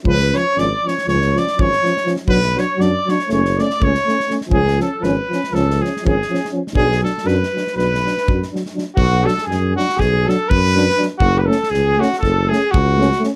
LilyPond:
<<
  \new Staff \with { instrumentName = "Flugelhorn" } { \time 9/8 \tempo 4. = 81 b'8 cis''8 d''8 cis''8 cis''8 d''8 cis''4~ cis''32 r16. | b'8 cis''8 d''8 cis''8 cis''8 d''8 cis''4~ cis''32 r16. | gis'8 a'8 b'4 a'8 gis'8 gis'4 r8 | gis'8 a'8 b'4 b'4. r4 |
fis'8 a'8 gis'8 fis'8 gis'8 a'8 b'4~ b'32 r16. | fis'16. b'32 a'8 gis'8 fis'8 a'8 gis'8 fis'4~ fis'32 r16. | }
  \new Staff \with { instrumentName = "Trumpet" } { \time 9/8 b'8 cis''8 d''8 cis''8 cis''8 d''8 cis''4~ cis''32 r16. | b'8 cis''8 d''8 cis''8 cis''8 d''8 cis''4~ cis''32 r16. | gis'8 a'8 b'4 a'8 gis'8 gis'4 r8 | gis'8 a'8 b'4 b'4. r4 |
fis'8 a'8 gis'8 fis'8 gis'8 a'8 b'4~ b'32 r16. | fis'16. b'32 a'8 gis'8 fis'8 a'8 gis'8 fis'4~ fis'32 r16. | }
  \new Staff \with { instrumentName = "Euphonium" } { \time 9/8 cis'8 cis'8 cis'8 cis'8 cis'8 cis'8 cis'8 cis'8 cis'8 | d'8 d'8 d'8 d'8 cis'8 cis'8 cis'8 cis'8 cis'8 | cis'8 cis'8 cis'8 cis'8 cis'8 cis'8 cis'8 cis'8 cis'8 | d'8 d'8 d'8 d'8 d'8 d'8 d'8 d'8 d'8 |
r8 d'8 r8 d'8 r8 d'8 r8 d'8 d'8 | r8 cis'8 r8 cis'8 r8 cis'8 r8 cis'8 cis'8 | }
  \new Staff \with { instrumentName = "Euphonium" } { \clef bass \time 9/8 eis8 eis8 eis8 eis8 eis8 eis8 eis8 eis8 eis8 | fis8 fis8 fis8 fis8 a8 a8 a8 a8 a8 | eis8 eis8 eis8 eis8 eis8 eis8 eis8 eis8 eis8 | fis8 fis8 fis8 fis8 fis8 fis8 fis8 fis8 fis8 |
r8 fis8 r8 fis8 r8 fis8 r8 fis8 fis8 | r8 a8 r8 a8 r8 a8 r8 a8 a8 | }
  \new Staff \with { instrumentName = "Tuba" } { \clef bass \time 9/8 cis,4 gis,,8 r8 cis,4 gis,,8 r4 | b,,4 fis,8 r8 fis,,4 cis,8 r4 | cis,4 gis,,8 r8 cis,4 gis,,8 r4 | b,,4 fis,8 r8 b,,4 fis,8 r4 |
b,,4 fis,4 b,,4 fis,4. | fis,,4 cis,4 fis,,4 cis,4. | }
  \new DrumStaff \with { instrumentName = "Drums" } \drummode { \time 9/8 bd16 sn16 sn8 sn8 sn16 sn16 sn16 sn16 sn16 sn16 bd16 sn16 sn16 sn16 sn16 sn16 | bd16 sn16 sn8 sn8 sn16 sn16 sn16 sn16 sn16 sn16 bd16 sn16 sn16 sn16 sn16 sn16 | bd16 sn16 sn8 sn8 sn16 sn16 sn16 sn16 sn16 sn16 bd16 sn16 sn16 sn8 sn16 | bd16 sn16 sn16 sn16 sn16 sn16 sn16 sn16 sn16 sn16 sn16 sn16 bd16 sn16 sn16 sn16 sn8 |
bd8 sn16 sn16 sn8 sn16 sn16 <bd sn>8 sn8 bd8 sn16 sn16 sn8 | bd8 sn16 sn16 sn8 sn16 sn16 <bd sn>8 sn8 bd8 sn16 sn16 sn8 | }
>>